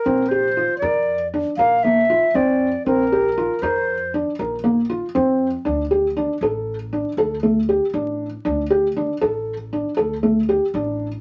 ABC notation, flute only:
X:1
M:11/8
L:1/8
Q:1/4=118
K:Bblyd
V:1 name="Flute"
B c2 d2 z f e2 d2 | B3 c2 z6 | z8 z3 | z8 z3 |]